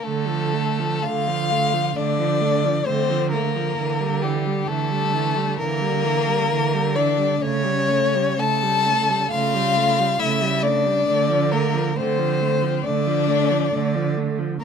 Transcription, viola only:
0.04 A3
0.27 F3
0.53 A3
0.79 F3
1.04 A3
1.28 F3
1.51 A3
1.73 F3
1.96 A3
2.19 F3
2.41 A3
2.65 F3
2.87 A3
3.10 F3
3.33 A3
3.56 F3
3.78 E3
4.00 G3
4.23 E3
4.46 G3
4.68 E3
4.91 G3
5.15 E3
5.36 G3
5.60 E3
5.82 G3
6.04 E3
6.27 G3
6.52 E3
6.74 G3
6.96 E3
7.18 G3
7.39 A3
7.64 G3
7.89 A3
8.15 G3
8.39 A3
8.63 G3
8.86 A3
9.09 G3
9.30 A3
9.54 G3
9.76 A3
9.99 G3
10.20 A3
10.41 G3
10.63 A3
10.86 G3
11.08 A3
11.29 F3
11.53 A3
11.74 F3
11.96 A3
12.18 F3
12.41 A3
12.62 F3
12.84 A3
13.06 F3
13.28 A3
13.51 F3
13.73 A3
13.95 F3
14.17 A3
14.39 F3
14.61 A#3

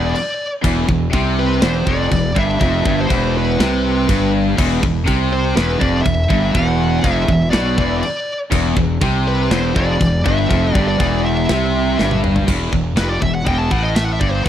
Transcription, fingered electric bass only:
Already playing: E1
0.65 E1
0.89 E1
1.14 C2
1.63 E1
1.87 F1
2.12 E1
2.37 G1
2.61 F1
2.86 G1
3.11 E1
3.60 C2
4.10 G1
4.58 E1
4.84 E1
5.08 C2
5.56 E1
5.81 F1
6.06 E1
6.30 G1
6.55 E1
7.04 F1
7.29 E1
7.54 B1
7.78 E1
8.52 E1
8.77 E1
9.02 C2
9.51 E1
9.77 F1
10.01 E1
10.26 G1
10.51 F1
10.76 G1
11.00 E1
11.50 C2
12.00 G1
12.48 E1
12.73 E1
12.97 F1
13.22 E1
13.47 E1
13.72 A1
14.21 G1

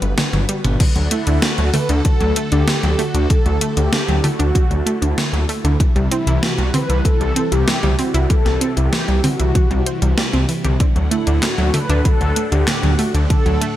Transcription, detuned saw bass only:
0.02 G1
0.33 G1
0.65 G1
0.96 D2
1.27 D2
1.58 D2
1.89 D2
2.21 D2
2.52 D2
2.83 D2
3.14 D2
3.46 D2
3.77 D2
4.08 D2
4.40 D2
4.71 D2
5.02 D2
5.33 D2
5.64 D2
5.96 C2
6.27 C2
6.58 C2
6.89 C2
7.21 C2
7.52 C2
7.83 C2
8.14 C2
8.46 C2
8.77 C2
9.08 C2
9.40 C2
9.71 C2
10.02 C2
10.34 C2
10.65 C2
10.96 D2
11.27 D2
11.58 D2
11.89 D2
12.21 D2
12.52 D2
12.83 D2
13.14 D2
13.46 D2

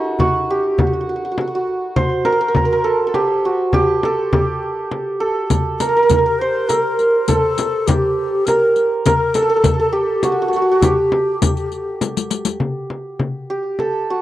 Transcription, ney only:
5.80 A#4
6.24 A#4
6.39 C5
6.69 A#4
7.27 A4
7.87 G4
8.46 A#4
9.07 A#4
9.34 A4
9.79 A4
9.94 G4
10.23 F#4
10.67 F#4
10.80 G4 A4

